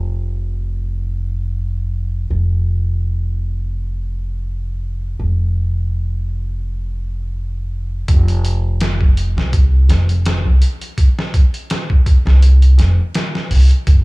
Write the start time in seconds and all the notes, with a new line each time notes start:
Already playing: F1
2.30 F1
5.20 F1
8.08 F1, kick, closed hi-hat
8.28 closed hi-hat
8.45 closed hi-hat
8.81 snare, closed hi-hat
9.01 kick
9.17 closed hi-hat
9.37 C2, snare
9.53 kick, closed hi-hat
9.89 F1, snare, closed hi-hat
10.09 closed hi-hat
10.26 snare, closed hi-hat
10.45 C2
10.62 closed hi-hat
10.81 closed hi-hat
10.98 kick, closed hi-hat
11.19 snare
11.34 kick, closed hi-hat
11.54 closed hi-hat
11.70 snare, closed hi-hat
11.90 kick
12.06 kick, closed hi-hat
12.26 C2, snare
12.42 closed hi-hat
12.62 closed hi-hat
12.78 F1, snare, closed hi-hat
13.14 snare, closed hi-hat
13.35 snare
13.51 C2, open hi-hat
13.71 closed hi-hat
13.87 F1, kick, closed hi-hat